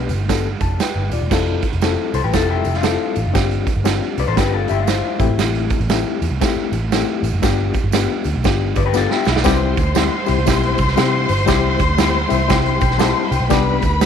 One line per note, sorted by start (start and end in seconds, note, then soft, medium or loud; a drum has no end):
0.00 0.11 B1 medium
0.00 0.11 B3 medium
0.00 0.12 D4 medium
0.00 0.12 G4 medium
0.00 0.12 B4 medium
0.09 0.54 G1 medium
0.09 closed hi-hat medium
0.09 tambourine medium
0.28 0.47 B3 medium
0.28 0.47 D4 medium
0.28 0.47 G4 medium
0.28 0.48 A4 medium
0.28 kick medium
0.28 snare loud
0.28 closed hi-hat medium
0.28 tambourine medium
0.61 0.77 F1 medium
0.61 0.80 A5 medium
0.61 kick medium
0.61 closed hi-hat medium
0.61 tambourine soft
0.80 1.11 B4 medium
0.80 1.11 G5 medium
0.80 snare loud
0.80 closed hi-hat medium
0.80 tambourine medium
0.95 1.10 G1 medium
1.11 1.20 D#1 medium
1.11 1.31 F4 soft
1.11 1.61 D5 medium
1.11 closed hi-hat medium
1.11 tambourine medium
1.21 1.30 E1 medium
1.31 1.59 F1 medium
1.31 1.65 C4 medium
1.31 1.66 E4 medium
1.31 1.66 F4 medium
1.31 1.66 A4 medium
1.31 kick loud
1.31 snare medium
1.31 crash medium
1.31 tambourine medium
1.62 kick medium
1.62 closed hi-hat medium
1.62 tambourine soft
1.73 1.95 F1 medium
1.73 closed hi-hat soft
1.81 2.17 C4 medium
1.81 2.17 E4 medium
1.81 2.17 F4 medium
1.81 2.17 A4 medium
1.81 snare loud
1.81 closed hi-hat medium
1.81 tambourine medium
2.14 2.22 C2 medium
2.14 2.24 A4 medium
2.14 2.24 C5 medium
2.14 closed hi-hat medium
2.14 tambourine medium
2.24 2.32 A1 medium
2.24 2.33 G4 medium
2.24 2.33 B4 medium
2.33 2.61 F1 medium
2.33 2.67 C4 medium
2.33 2.68 E4 medium
2.33 2.68 F4 medium
2.33 2.49 F4 medium
2.33 2.49 A4 medium
2.33 2.68 A4 medium
2.33 kick medium
2.33 snare loud
2.33 closed hi-hat medium
2.33 tambourine medium
2.50 2.74 E4 medium
2.50 2.74 G4 medium
2.64 2.96 F1 medium
2.64 closed hi-hat soft
2.64 tambourine medium
2.74 3.34 D4 medium
2.74 3.33 F4 medium
2.74 snare soft
2.83 3.18 C4 medium
2.83 3.18 E4 medium
2.83 3.18 F4 medium
2.83 3.19 A4 medium
2.83 snare loud
2.83 closed hi-hat medium
2.83 tambourine medium
3.16 3.25 A1 medium
3.16 closed hi-hat medium
3.16 tambourine medium
3.26 3.34 F#1 medium
3.34 3.63 G1 medium
3.34 3.69 C4 medium
3.34 3.69 D4 medium
3.34 3.69 F4 medium
3.34 3.69 G4 medium
3.34 kick loud
3.34 snare medium
3.34 closed hi-hat medium
3.34 tambourine loud
3.51 closed hi-hat medium
3.67 kick medium
3.67 closed hi-hat medium
3.67 tambourine soft
3.76 3.99 G1 medium
3.84 4.20 C4 medium
3.84 4.20 D4 medium
3.84 4.20 F4 medium
3.84 4.20 G4 medium
3.84 snare loud
3.84 closed hi-hat medium
3.84 tambourine loud
4.18 4.26 C2 medium
4.18 4.28 B4 medium
4.18 4.27 D5 medium
4.18 closed hi-hat medium
4.18 tambourine soft
4.28 4.36 A1 medium
4.28 4.37 A4 medium
4.28 4.37 C5 medium
4.36 4.65 G1 medium
4.36 4.71 C4 medium
4.36 4.71 D4 medium
4.36 4.70 F4 medium
4.36 4.68 G4 medium
4.36 4.53 G4 medium
4.36 4.53 B4 medium
4.36 kick medium
4.36 snare loud
4.36 closed hi-hat medium
4.36 tambourine medium
4.53 4.69 F4 medium
4.53 4.69 A4 medium
4.68 5.00 G1 medium
4.68 4.79 E4 medium
4.68 4.88 G4 medium
4.68 4.79 G4 medium
4.68 4.87 E5 medium
4.68 closed hi-hat medium
4.68 tambourine medium
4.80 5.19 D4 medium
4.80 5.19 F4 medium
4.87 5.19 E4 medium
4.87 5.37 C5 medium
4.87 snare loud
4.87 closed hi-hat medium
4.87 tambourine medium
5.19 5.28 A1 loud
5.19 5.79 A3 medium
5.19 5.79 C4 medium
5.19 5.79 E4 medium
5.19 5.79 G4 medium
5.19 kick loud
5.19 closed hi-hat medium
5.19 tambourine medium
5.30 5.38 G#1 loud
5.39 5.67 A1 loud
5.39 snare loud
5.39 closed hi-hat medium
5.39 tambourine loud
5.55 closed hi-hat medium
5.70 kick medium
5.70 closed hi-hat medium
5.70 tambourine soft
5.80 6.02 A1 medium
5.80 closed hi-hat soft
5.89 6.24 A3 medium
5.89 6.25 C4 medium
5.89 6.25 E4 medium
5.89 6.25 G4 medium
5.89 snare loud
5.89 closed hi-hat medium
5.89 tambourine loud
6.22 6.29 E2 medium
6.22 closed hi-hat medium
6.22 tambourine soft
6.30 6.39 C2 medium
6.41 6.75 A3 medium
6.41 6.75 C4 medium
6.41 6.76 E4 medium
6.41 6.75 G4 medium
6.41 kick medium
6.41 snare loud
6.41 closed hi-hat medium
6.41 tambourine medium
6.56 muted picked electric bass stroke soft
6.72 7.03 A1 medium
6.72 closed hi-hat medium
6.72 tambourine medium
6.92 7.27 A3 medium
6.92 7.27 C4 medium
6.92 7.27 E4 medium
6.92 7.28 G4 medium
6.92 snare loud
6.92 closed hi-hat medium
6.92 tambourine medium
7.23 7.32 A1 medium
7.23 closed hi-hat medium
7.23 tambourine medium
7.33 7.42 F#1 medium
7.42 7.70 G1 loud
7.42 7.77 B3 medium
7.42 7.77 D4 medium
7.42 7.77 F4 medium
7.42 7.78 G4 loud
7.42 kick loud
7.42 snare loud
7.42 closed hi-hat medium
7.42 tambourine medium
7.74 kick medium
7.74 closed hi-hat medium
7.74 tambourine soft
7.84 8.06 G1 medium
7.92 8.28 B3 medium
7.92 8.28 D4 medium
7.92 8.28 F4 medium
7.92 8.29 G4 medium
7.92 snare loud
7.92 closed hi-hat medium
7.92 tambourine loud
8.24 8.34 D2 medium
8.24 closed hi-hat medium
8.24 tambourine medium
8.36 8.44 B1 medium
8.44 8.72 G1 medium
8.44 8.79 B3 medium
8.44 8.78 D4 medium
8.44 8.79 F4 medium
8.44 8.79 G4 medium
8.44 kick loud
8.44 snare loud
8.44 closed hi-hat medium
8.44 tambourine medium
8.76 9.06 G1 medium
8.76 8.85 B4 medium
8.76 8.85 D5 medium
8.76 kick medium
8.76 closed hi-hat medium
8.76 tambourine medium
8.86 8.95 G4 medium
8.86 8.95 B4 medium
8.94 9.29 B3 medium
8.94 9.29 D4 medium
8.94 9.29 F4 medium
8.94 9.11 F4 medium
8.94 9.29 G4 medium
8.94 9.11 A4 medium
8.94 snare medium
8.94 tambourine medium
9.11 9.27 E4 medium
9.11 9.27 G4 medium
9.11 snare medium
9.25 9.35 B1 medium
9.25 9.37 E4 medium
9.25 snare medium
9.25 tambourine medium
9.36 9.45 B1 medium
9.36 9.61 B3 medium
9.36 9.61 D4 medium
9.36 snare medium
9.44 9.73 C2 loud
9.44 9.79 G3 loud
9.44 9.79 C4 loud
9.44 9.80 E4 medium
9.44 9.80 G4 loud
9.44 13.47 C5 medium
9.44 13.47 C6 loud
9.44 kick loud
9.44 snare loud
9.44 closed hi-hat medium
9.44 tambourine loud
9.77 10.08 D2 medium
9.77 kick loud
9.77 closed hi-hat medium
9.77 tambourine soft
9.95 10.14 G3 medium
9.95 10.14 C4 medium
9.95 10.14 E4 medium
9.95 10.14 G4 loud
9.95 snare loud
9.95 closed hi-hat medium
9.95 tambourine loud
10.26 10.37 C2 medium
10.26 10.38 G3 medium
10.26 10.38 C4 medium
10.26 10.39 E4 medium
10.26 10.39 G4 medium
10.26 closed hi-hat medium
10.26 tambourine medium
10.38 10.46 C2 medium
10.46 10.75 B1 loud
10.46 10.81 G3 medium
10.46 10.81 C4 medium
10.46 10.81 E4 medium
10.46 10.81 G4 medium
10.46 kick medium
10.46 snare loud
10.46 closed hi-hat medium
10.46 tambourine loud
10.63 closed hi-hat medium
10.78 10.95 C2 medium
10.78 kick medium
10.78 closed hi-hat medium
10.78 tambourine medium
10.88 snare soft
10.96 11.25 C3 loud
10.96 11.31 G3 medium
10.96 11.31 C4 medium
10.96 11.31 E4 medium
10.96 11.32 G4 medium
10.96 snare loud
10.96 closed hi-hat medium
10.96 tambourine medium
11.29 11.46 G1 medium
11.29 closed hi-hat medium
11.29 tambourine medium
11.38 closed hi-hat soft
11.46 11.76 C2 loud
11.46 11.82 G3 loud
11.46 11.82 C4 medium
11.46 11.82 E4 loud
11.46 11.82 G4 loud
11.46 kick loud
11.46 snare loud
11.46 closed hi-hat medium
11.46 tambourine loud
11.79 12.24 D2 medium
11.79 kick medium
11.79 closed hi-hat medium
11.79 tambourine medium
11.98 12.16 G3 medium
11.98 12.17 C4 medium
11.98 12.17 E4 medium
11.98 12.17 G4 medium
11.98 snare loud
11.98 closed hi-hat medium
11.98 tambourine loud
12.29 12.48 C2 medium
12.29 12.41 G3 medium
12.29 12.41 C4 medium
12.29 12.41 E4 medium
12.29 12.41 G4 medium
12.29 12.48 E5 medium
12.29 closed hi-hat medium
12.29 tambourine medium
12.48 12.77 C2 loud
12.48 12.83 G3 medium
12.48 12.84 C4 medium
12.48 12.84 E4 medium
12.48 12.84 G4 medium
12.48 12.79 G5 medium
12.48 kick loud
12.48 snare loud
12.48 closed hi-hat medium
12.48 tambourine loud
12.66 closed hi-hat medium
12.81 13.12 B1 medium
12.81 12.99 G5 medium
12.81 kick medium
12.81 closed hi-hat medium
12.81 tambourine medium
12.91 snare soft
12.97 13.33 G3 medium
12.97 13.33 C4 medium
12.97 13.34 E4 medium
12.97 13.34 G4 loud
12.97 13.29 A5 medium
12.97 snare loud
12.97 closed hi-hat loud
12.97 tambourine medium
13.32 13.40 C2 medium
13.32 13.50 G5 medium
13.32 closed hi-hat medium
13.32 tambourine medium
13.40 13.49 B1 loud
13.50 13.78 C2 loud
13.50 13.85 G3 loud
13.50 13.85 B3 loud
13.50 13.85 D4 loud
13.50 13.85 G4 loud
13.50 14.06 B4 medium
13.50 14.06 B5 loud
13.50 kick loud
13.50 snare loud
13.50 closed hi-hat medium
13.50 tambourine medium
13.82 14.06 D2 medium
13.82 kick medium
13.82 closed hi-hat medium
13.82 tambourine medium
14.01 14.06 G3 medium
14.01 14.06 B3 medium
14.01 14.06 D4 medium
14.01 14.06 G4 medium
14.01 snare loud
14.01 closed hi-hat medium
14.01 tambourine loud